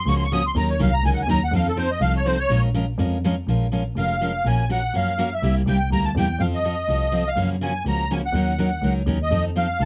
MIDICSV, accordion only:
0, 0, Header, 1, 2, 480
1, 0, Start_track
1, 0, Key_signature, -5, "minor"
1, 0, Tempo, 243408
1, 1089, Time_signature, 4, 2, 24, 8
1, 19426, End_track
2, 0, Start_track
2, 0, Title_t, "Accordion"
2, 0, Program_c, 0, 21
2, 152, Note_on_c, 0, 85, 108
2, 295, Note_off_c, 0, 85, 0
2, 328, Note_on_c, 0, 84, 72
2, 464, Note_off_c, 0, 84, 0
2, 486, Note_on_c, 0, 85, 94
2, 623, Note_off_c, 0, 85, 0
2, 651, Note_on_c, 0, 87, 103
2, 888, Note_off_c, 0, 87, 0
2, 912, Note_on_c, 0, 84, 91
2, 1101, Note_off_c, 0, 84, 0
2, 1129, Note_on_c, 0, 82, 92
2, 1367, Note_off_c, 0, 82, 0
2, 1383, Note_on_c, 0, 73, 70
2, 1577, Note_off_c, 0, 73, 0
2, 1602, Note_on_c, 0, 77, 80
2, 1844, Note_off_c, 0, 77, 0
2, 1847, Note_on_c, 0, 82, 107
2, 2049, Note_off_c, 0, 82, 0
2, 2074, Note_on_c, 0, 80, 89
2, 2217, Note_off_c, 0, 80, 0
2, 2254, Note_on_c, 0, 78, 90
2, 2387, Note_off_c, 0, 78, 0
2, 2415, Note_on_c, 0, 80, 79
2, 2548, Note_off_c, 0, 80, 0
2, 2573, Note_on_c, 0, 82, 101
2, 2810, Note_off_c, 0, 82, 0
2, 2839, Note_on_c, 0, 78, 88
2, 3025, Note_off_c, 0, 78, 0
2, 3063, Note_on_c, 0, 77, 82
2, 3294, Note_off_c, 0, 77, 0
2, 3318, Note_on_c, 0, 69, 77
2, 3505, Note_off_c, 0, 69, 0
2, 3514, Note_on_c, 0, 72, 81
2, 3760, Note_off_c, 0, 72, 0
2, 3771, Note_on_c, 0, 75, 94
2, 3971, Note_off_c, 0, 75, 0
2, 3973, Note_on_c, 0, 77, 96
2, 4229, Note_off_c, 0, 77, 0
2, 4273, Note_on_c, 0, 73, 83
2, 4461, Note_on_c, 0, 72, 85
2, 4462, Note_off_c, 0, 73, 0
2, 4713, Note_off_c, 0, 72, 0
2, 4722, Note_on_c, 0, 73, 101
2, 5165, Note_off_c, 0, 73, 0
2, 7852, Note_on_c, 0, 77, 79
2, 8814, Note_on_c, 0, 80, 91
2, 8821, Note_off_c, 0, 77, 0
2, 9241, Note_off_c, 0, 80, 0
2, 9303, Note_on_c, 0, 78, 80
2, 9772, Note_off_c, 0, 78, 0
2, 9776, Note_on_c, 0, 77, 83
2, 10522, Note_off_c, 0, 77, 0
2, 10529, Note_on_c, 0, 76, 88
2, 10953, Note_off_c, 0, 76, 0
2, 11189, Note_on_c, 0, 79, 86
2, 11629, Note_off_c, 0, 79, 0
2, 11682, Note_on_c, 0, 82, 97
2, 11916, Note_off_c, 0, 82, 0
2, 11926, Note_on_c, 0, 81, 89
2, 12123, Note_off_c, 0, 81, 0
2, 12170, Note_on_c, 0, 79, 87
2, 12620, Note_on_c, 0, 77, 88
2, 12646, Note_off_c, 0, 79, 0
2, 12739, Note_off_c, 0, 77, 0
2, 12909, Note_on_c, 0, 75, 82
2, 14344, Note_on_c, 0, 77, 74
2, 14378, Note_off_c, 0, 75, 0
2, 14779, Note_off_c, 0, 77, 0
2, 15042, Note_on_c, 0, 80, 81
2, 15475, Note_off_c, 0, 80, 0
2, 15551, Note_on_c, 0, 82, 88
2, 16016, Note_off_c, 0, 82, 0
2, 16018, Note_on_c, 0, 80, 76
2, 16128, Note_off_c, 0, 80, 0
2, 16278, Note_on_c, 0, 78, 74
2, 17618, Note_off_c, 0, 78, 0
2, 18195, Note_on_c, 0, 75, 92
2, 18623, Note_off_c, 0, 75, 0
2, 18883, Note_on_c, 0, 77, 88
2, 19360, Note_off_c, 0, 77, 0
2, 19366, Note_on_c, 0, 81, 103
2, 19426, Note_off_c, 0, 81, 0
2, 19426, End_track
0, 0, End_of_file